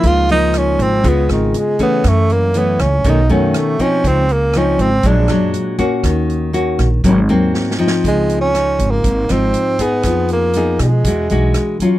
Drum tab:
HH |x--x--x--x--x--x--x--x--|x--x--x--x--x--x--x--x--|x--x--x--x--x--x--x--x--|x--x--x--x--x--x--------|
SD |------r--------r--------|r--------r--------r-----|------r--------r--------|r--------r--------o-o-o-|
BD |o--------o--o--------o--|o--------o--o--------o--|o--------o--o--------o--|o--------o--o-----------|

HH |x--x--x--x--x--x--x--x--|x--x--x--x--x--x--x--x--|
SD |------r--------r--------|r--------r--------r-----|
BD |o--------o--o--------o--|o--------o--o--------o--|